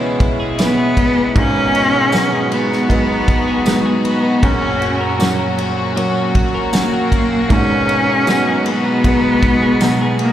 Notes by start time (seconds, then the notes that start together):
Already playing: C#2 B2 C#3 E3 G#3 B3 C#4 E4 G#4
0.01 B3
0.20 E4, kick, ride
0.40 G#4
0.58 E3 B3 C#4 E4, snare, ride, tambourine
0.77 G#4
0.97 B3, kick, ride
1.16 E4
1.35 G#1 G#2 G#3 C#4 D#4 F#4, kick, ride
1.54 B3
1.74 D#4, ride
1.93 G#4
2.12 F#3 G#3 B3 D#4, snare, ride, tambourine
2.32 G#4
2.52 B3, ride
2.71 D#4, snare
2.89 G#2 F#3 G#3 B3, kick, ride
3.09 B3
3.28 D#4, kick, ride
3.47 G#4
3.66 F#3 G#3 B3 D#4, snare, ride, tambourine
3.85 G#4
4.05 B3, ride
4.24 D#4
4.42 F#1 F#2 A#2 F#3 C#4, kick, ride
4.61 C#4
4.81 F#4, ride
5.01 A#4
5.19 F#3 A#3 C#4 F#4, snare, ride, tambourine
5.39 A#4
5.58 C#4, ride
5.77 F#4
5.96 F#3 A#3 C#4, ride
6.16 C#4
6.35 F#4, kick, ride
6.55 A#4
6.72 F#3 A#3 C#4 F#4, snare, ride, tambourine
6.77 A#3
6.93 A#4
7.12 C#4, kick, ride
7.32 F#4
7.49 G#1 G#2 B2 G#3 C#4 D#4, kick, ride
7.70 B3
7.89 D#4, ride
8.09 G#4
8.27 F#3 G#3 B3 D#4, snare, ride, tambourine
8.46 G#4
8.66 B3, ride
8.85 D#4
9.04 G#2 F#3 G#3 B3, kick, ride
9.23 B3
9.42 D#4, kick, ride
9.62 G#4
9.80 B2 F#3 G#3 D#4, snare, ride, tambourine
10.01 G#4
10.19 A#3, ride